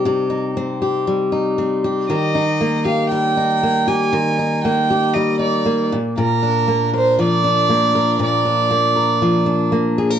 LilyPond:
<<
  \new Staff \with { instrumentName = "Violin" } { \time 4/4 \key ees \major \tempo 4 = 118 r1 | ees''4. f''8 g''4. aes''8~ | aes''4 g''4 ees''8 d''4 r8 | bes'4. c''8 d''2 |
d''2. r4 | }
  \new Staff \with { instrumentName = "Steel-string acoustic guitar" } { \time 4/4 \key ees \major <c g c' ees' g'>8 ees'8 c'8 g'8 g8 ees'8 c'8 g'8 | <ees g'>8 ees'8 bes8 g'8 g8 ees'8 bes8 g'8 | ees8 ees'8 bes8 g'8 g8 ees'8 bes8 bes,8 | <bes, bes'>8 d'8 bes8 bes'8 f8 d'8 bes8 bes'8 |
<bes, bes'>8 d'8 bes8 bes'8 f8 d'8 bes8 aes'16 bes'16 | }
>>